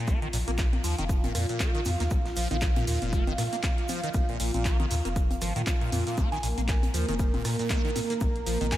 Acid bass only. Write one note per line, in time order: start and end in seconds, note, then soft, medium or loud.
0.08 0.20 A#3 medium
0.22 0.28 D#3 loud
0.33 0.38 A#2 medium
0.48 0.51 A#3 medium
0.84 0.96 F3 medium
0.98 1.04 D#3 loud
1.24 1.33 A#2 medium
1.35 1.47 A#2 medium
1.49 1.62 A#2 medium
1.60 1.72 A#3 medium
1.75 1.81 D#3 loud
1.86 1.90 A#2 medium
2.00 2.04 A#3 medium
2.37 2.48 F3 medium
2.51 2.57 D#3 loud
2.76 2.85 A#2 medium
2.87 2.99 A#2 medium
3.02 3.14 A#2 medium
3.13 3.25 A#3 medium
3.27 3.33 D#3 loud
3.38 3.43 A#2 medium
3.53 3.56 A#3 medium
3.89 4.01 F3 medium
4.03 4.09 D#3 loud
4.29 4.38 A#2 medium
4.40 4.52 A#2 medium
4.54 4.67 A#2 medium
4.65 4.77 A#3 medium
4.80 4.86 D#3 loud
4.91 4.95 A#2 medium
5.05 5.09 A#3 medium
5.42 5.53 F3 medium
5.56 5.62 D#3 loud
5.81 5.90 A#2 medium
5.92 6.04 A#2 medium
6.07 6.19 A#2 medium
6.18 6.30 A#3 medium
6.32 6.38 D#3 loud
6.43 6.48 A#2 medium
6.58 6.61 A#3 medium
6.94 7.06 F3 medium
7.09 7.15 D#3 loud
7.34 7.43 A#2 medium
7.45 7.57 A#2 medium
7.59 7.72 A#2 medium
7.70 7.82 A#3 medium
7.85 7.91 D#3 loud
7.96 8.00 A#2 medium
8.10 8.14 A#3 medium
8.46 8.58 F3 medium
8.61 8.67 D#3 loud